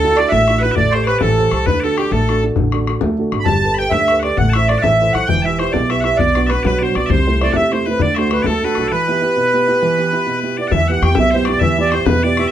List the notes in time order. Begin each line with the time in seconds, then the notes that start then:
Already playing: D2 D3 A4
0.02 D4 E4 F#4, bodhran
0.17 D4 E4 F#4 D5, bodhran
0.29 A1 A3 E5 F#5, bodhran
0.48 D4 E4 F#4, bodhran
0.59 B4 F#5
0.63 D4 E4 F#4
0.72 E5
0.76 A1 A3 D5, bodhran
0.91 G4 A4 C5, bodhran
0.95 C5
1.04 G4 B4 D5, bodhran
1.08 A4 C5
1.18 A1 E3 A4 D5, bodhran
1.37 G4 A4 C5, bodhran
1.51 C2 G4 A4, bodhran
1.66 D2 D3 B4, bodhran
1.80 D4 A4 D5, bodhran
1.84 F#4 A4
1.97 D4 F#4 G4 A4, bodhran
2.11 A1 A3 A4, bodhran
2.29 D4 F#4 A4, bodhran
2.43 D4 F#4 A4
2.56 A1 D3, bodhran
2.72 D4 F#4 A4, bodhran
2.87 D4 F#4 A4, bodhran
3.01 D2 A3, bodhran
3.19 D4 F#4 A4, bodhran
3.32 G#1 D4 F#4 A4, bodhran
3.39 B5
3.45 G1 G3 A5, bodhran
3.63 G4 A4 B4, bodhran
3.74 B5
3.78 G4 A4 B4 G5
3.90 D2 E5, bodhran
3.94 D3
4.08 G4 A4 B4, bodhran
4.19 G4 D5 F#5, bodhran
4.24 A4 B4 D5
4.37 A1 A3 F#5, bodhran
4.49 A5, bodhran
4.53 E4 A4 C5 E5
4.69 E4 A4 C5 D5, bodhran
4.78 E5 F#5
4.82 A1 E3 E5, bodhran
5.01 E4 A4 C5, bodhran
5.13 B1 E4 A4 C5 F#5, bodhran
5.27 E1 E3 G5, bodhran
5.42 E4 E5 A5
5.46 G4 B4
5.59 E4 G4 B4 C5, bodhran
5.72 B1 B2 D5, bodhran
5.89 E4 G4 B4 E5, bodhran
6.01 E4 G4 E5 F#5, bodhran
6.05 B4
6.17 B1 B2 D5 F#5, bodhran
6.21 D5
6.35 B3 D4 F#4, bodhran
6.47 B3 B4 E5, bodhran
6.51 D4 F#4 B4
6.63 B1 F#3 B4 D5, bodhran
6.79 B3 D4 F#4 D5
6.83 C5
6.95 B1 B3 D4 F#4 D5, bodhran
7.06 C2 C5 E5, bodhran
7.11 C3 C5
7.27 A3 C4 E4, bodhran
7.41 A3 C4 E4 D5, bodhran
7.52 E2 C3 E5 F#5, bodhran
7.72 A3 C4 E4 C5, bodhran
7.86 A3 C4 E4 B4
7.90 B4
7.99 D2 D3 D5, bodhran
8.15 A3 D4 F#4 C5 E5, bodhran
8.20 C5
8.31 A3 D4 F#4 B4, bodhran
8.43 A3 A4 D5, bodhran
8.47 D2 A4
8.62 A3 D4 F#4 B4, bodhran
8.75 B1 A3 D4 F#4, bodhran
8.79 A4
8.88 E3 B4 D5
9.08 B3 E4 G4
9.22 B3 E4 G4
9.36 B2
9.54 B3 E4 G4
9.68 B3 E4 G4
9.82 E3
9.98 B3 E4 G4
10.13 B3 E4 G4
10.26 B2
10.43 B3 E4 G4
10.57 B3 E4 G4 D5
10.68 E3 E5 F#5, bodhran
10.72 E2 E5
10.88 B3 E4 G4 F#5
10.92 F#5
11.02 E2 B3 E4 G4 G5, bodhran
11.09 bodhran
11.15 B1 B2 E5, bodhran
11.20 E5
11.31 B3 C5, bodhran
11.35 E4 G4
11.45 B3 E4 G4 D5, bodhran
11.50 D5, bodhran
11.60 E2 E3 E5, bodhran
11.78 B3 E4 G4 D5, bodhran
11.91 B3 E4 G4 C5, bodhran
12.05 E2 B2 B4, bodhran
12.23 B3 E4 G4 D5
12.37 B3 E4 G4 E5, bodhran
12.44 E5, bodhran